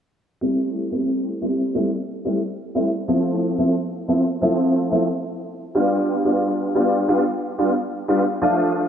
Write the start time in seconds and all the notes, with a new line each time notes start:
0.41 G3 A3 C4 E4
0.91 G3 A3 C4 E4
1.41 G3 A3 C4 E4
1.75 G3 A3 C4 E4
2.25 G3 A3 C4 E4
2.75 G3 A3 C4 E4
3.08 F3 A3 C4 E4
3.58 F3 A3 C4 E4
4.08 F3 A3 C4 E4
4.41 F3 A3 C4 E4
4.91 F3 A3 C4 E4
5.75 G3 B3 D4 F4
6.25 G3 B3 D4 F4
6.75 G3 B3 D4 F4
7.08 G3 B3 D4 F4
7.58 G3 B3 D4 F4
8.08 G3 B3 D4 F4
8.41 F3 A3 D4 F4